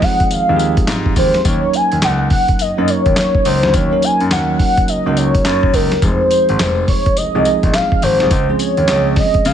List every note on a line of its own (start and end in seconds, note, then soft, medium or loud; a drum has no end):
0.00 0.49 F3 medium
0.00 0.49 G#3 medium
0.00 0.49 C4 medium
0.00 0.50 D#4 medium
0.00 0.56 G#4 loud
0.00 0.27 F#5 loud
0.00 kick loud
0.00 snare medium
0.00 open hi-hat medium
0.20 kick medium
0.20 closed hi-hat medium
0.27 0.33 F#5 medium
0.31 0.39 D#2 soft
0.31 0.89 F5 loud
0.31 closed hi-hat medium
0.31 tambourine medium
0.49 0.73 D#2 loud
0.49 1.29 F3 medium
0.49 1.30 G#3 medium
0.49 1.30 C4 medium
0.49 1.30 D#4 medium
0.49 0.54 G4 medium
0.56 1.33 G#4 medium
0.56 closed hi-hat medium
0.56 tambourine medium
0.77 kick loud
0.77 closed hi-hat medium
0.87 1.12 G#2 loud
0.87 snare loud
0.87 clap medium
0.87 closed hi-hat medium
0.87 tambourine loud
1.06 kick medium
1.16 1.31 D#2 loud
1.16 1.49 C5 medium
1.16 kick medium
1.16 open hi-hat medium
1.16 tambourine medium
1.34 snare medium
1.34 closed hi-hat medium
1.45 1.60 D#2 loud
1.45 2.41 F#3 medium
1.45 2.41 A#3 medium
1.45 2.41 C#4 medium
1.45 2.41 D#4 medium
1.45 2.41 A#4 loud
1.45 1.76 C#5 loud
1.45 kick loud
1.45 closed hi-hat medium
1.45 tambourine medium
1.73 2.06 G#5 loud
1.73 closed hi-hat medium
1.73 tambourine medium
1.92 2.01 D#2 medium
1.92 closed hi-hat medium
2.02 2.26 C#2 loud
2.02 2.32 F#5 loud
2.02 snare loud
2.02 clap loud
2.02 closed hi-hat medium
2.02 tambourine loud
2.30 2.63 F#5 loud
2.30 kick loud
2.30 open hi-hat medium
2.48 kick medium
2.48 closed hi-hat medium
2.59 2.67 F#2 soft
2.59 2.91 D#5 loud
2.59 closed hi-hat medium
2.59 tambourine medium
2.77 2.87 F#2 medium
2.77 3.44 F#3 medium
2.77 3.44 A#3 medium
2.77 3.44 C#4 medium
2.77 3.45 D#4 medium
2.77 3.45 A#4 medium
2.88 3.17 C#5 loud
2.88 closed hi-hat medium
2.88 tambourine medium
3.06 3.15 D#2 medium
3.06 kick loud
3.06 closed hi-hat medium
3.16 3.48 C#5 loud
3.16 snare loud
3.16 clap medium
3.16 closed hi-hat medium
3.16 tambourine loud
3.35 kick medium
3.45 3.60 C#2 loud
3.45 3.77 C5 medium
3.45 open hi-hat medium
3.45 tambourine medium
3.63 3.72 D2 medium
3.63 3.85 F#3 medium
3.63 3.85 A#3 medium
3.63 3.85 C#4 medium
3.63 3.86 D#4 medium
3.63 3.86 F#4 medium
3.63 snare medium
3.63 closed hi-hat soft
3.74 3.89 D#2 loud
3.74 4.06 C#5 loud
3.74 kick loud
3.74 closed hi-hat medium
3.74 tambourine medium
3.92 4.25 F#3 medium
3.92 4.25 A#3 medium
3.92 4.25 C#4 medium
3.92 4.26 D#4 medium
3.92 4.26 A#4 medium
4.02 4.32 G#5 loud
4.02 closed hi-hat medium
4.02 tambourine medium
4.20 4.29 F#2 medium
4.20 closed hi-hat medium
4.31 4.55 D#2 loud
4.31 4.90 F#3 medium
4.31 4.90 A#3 medium
4.31 4.90 C#4 medium
4.31 4.90 D#4 medium
4.31 4.90 A#4 medium
4.31 4.58 F#5 loud
4.31 snare loud
4.31 clap medium
4.31 closed hi-hat medium
4.31 tambourine loud
4.59 4.90 F#5 loud
4.59 kick loud
4.59 open hi-hat medium
4.77 kick loud
4.77 closed hi-hat medium
4.88 4.95 C#2 soft
4.88 5.13 D#5 loud
4.88 closed hi-hat medium
4.88 tambourine medium
5.06 5.30 C#2 medium
5.06 5.87 F#3 medium
5.06 5.87 A#3 medium
5.06 5.87 C#4 medium
5.06 5.87 D#4 medium
5.06 5.87 A#4 medium
5.13 5.19 D#5 medium
5.17 5.45 C#5 medium
5.17 closed hi-hat medium
5.17 tambourine medium
5.35 kick loud
5.35 closed hi-hat medium
5.45 5.69 F#2 loud
5.45 5.76 C#5 loud
5.45 snare loud
5.45 clap medium
5.45 closed hi-hat medium
5.45 tambourine loud
5.63 kick medium
5.74 5.89 C#2 loud
5.74 6.04 A#4 medium
5.74 kick medium
5.74 open hi-hat medium
5.74 tambourine medium
5.92 snare medium
5.92 closed hi-hat medium
6.02 6.17 F1 loud
6.02 6.98 F3 medium
6.02 6.98 G#3 medium
6.02 6.98 C4 medium
6.02 6.98 D#4 medium
6.02 6.98 G#4 loud
6.02 6.88 C5 loud
6.02 kick loud
6.02 closed hi-hat medium
6.02 tambourine medium
6.31 closed hi-hat medium
6.31 tambourine medium
6.49 6.58 G#1 loud
6.49 closed hi-hat medium
6.59 6.83 F1 loud
6.59 snare loud
6.59 clap medium
6.59 closed hi-hat medium
6.59 tambourine medium
6.88 7.19 C#5 medium
6.88 kick loud
6.88 open hi-hat medium
7.06 kick loud
7.06 closed hi-hat medium
7.17 7.24 C2 soft
7.17 7.76 D#5 loud
7.17 closed hi-hat medium
7.17 tambourine medium
7.35 7.44 C2 loud
7.35 8.01 F3 medium
7.35 8.01 G#3 medium
7.35 8.02 C4 medium
7.35 8.02 D#4 medium
7.35 8.02 G#4 loud
7.45 closed hi-hat medium
7.45 tambourine medium
7.63 7.72 A#1 medium
7.63 kick loud
7.63 closed hi-hat medium
7.74 8.04 F5 loud
7.74 snare loud
7.74 clap medium
7.74 closed hi-hat medium
7.74 tambourine loud
7.92 kick loud
8.02 8.18 G#1 medium
8.02 8.62 C5 loud
8.02 open hi-hat medium
8.02 tambourine medium
8.20 8.29 C2 medium
8.20 8.31 F3 medium
8.20 8.31 G#3 medium
8.20 8.31 C4 medium
8.20 8.31 D#4 medium
8.20 8.32 G#4 loud
8.20 snare medium
8.20 closed hi-hat medium
8.31 8.46 C#2 loud
8.31 kick loud
8.31 closed hi-hat medium
8.31 tambourine medium
8.49 8.82 F3 medium
8.49 8.82 G#3 medium
8.49 8.83 C4 medium
8.49 8.83 C#4 medium
8.49 8.83 G#4 medium
8.59 9.19 C#5 loud
8.59 closed hi-hat medium
8.59 tambourine medium
8.77 8.86 D#2 medium
8.77 closed hi-hat medium
8.88 9.12 C#2 loud
8.88 9.47 F3 medium
8.88 9.47 G#3 medium
8.88 9.47 C4 medium
8.88 9.47 C#4 medium
8.88 9.48 G#4 medium
8.88 snare loud
8.88 clap loud
8.88 closed hi-hat medium
8.88 tambourine loud
9.16 9.48 D#5 medium
9.16 kick medium
9.16 snare medium
9.16 open hi-hat medium
9.34 kick medium
9.34 closed hi-hat medium
9.45 9.53 C#3 loud
9.45 9.53 F5 loud
9.45 closed hi-hat medium
9.45 tambourine medium